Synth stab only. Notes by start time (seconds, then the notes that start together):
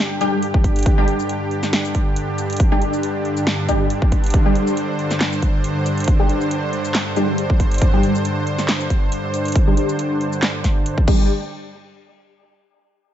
Already playing: G3 D4 G4
0.21 G3 D4 G4
0.98 G3 D4 G4
2.72 G3 D4 G4
3.69 G3 D4 G4
4.45 G3 D4 G4
6.19 G3 D4 G4
7.16 G3 D4 G4
7.93 G3 D4 G4
9.67 G3 D4 G4
11.08 G3 D4 G4